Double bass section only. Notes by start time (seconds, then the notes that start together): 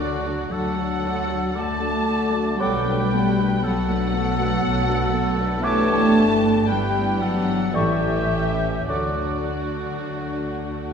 Already playing: D2
0.52 D2
1.58 D2
2.61 B1
3.65 B1
4.65 B1
5.65 G1
7.76 A1
8.90 D2